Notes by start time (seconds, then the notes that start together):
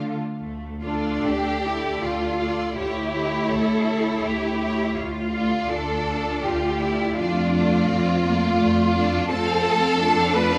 Already playing: D3 A3 D4 F4 A4
0.40 D2 A3
0.83 A3 D4 F4 A4 D5
1.26 D2 D4 G4
1.66 A3 E4 A4 D5
2.03 D2 F4
2.41 A3 A4 D5
2.77 D2 A3 E4 G4 C#5
3.14 A3 G4 C#5
3.52 D2 A4
3.88 A3 G4 C#5
4.24 D2 G4
4.61 A3 G4 C#5
4.98 D2 F4
5.33 A3 F4 D5
5.71 D2 D4 A4
6.09 A3 F4 D5
6.44 D2 F4 G4
6.80 A3 E4 F4 D5
7.16 F2 A3 D4 F4 D5
7.54 A3 F4 D5
7.88 F2 C4
8.23 A3 A#3 F4 D5
8.59 F2 A3
8.94 A3 D4 F4 D5
9.29 F2 A3 C4 F4 A4 A5
9.46 C4 A4 F5
9.63 A3 F4 A5
9.80 C4 A4 F5
9.98 A3 D4 F4 A5
10.16 C4 A4 F5
10.34 A3 F4 B4 A5
10.53 C4 A4 F5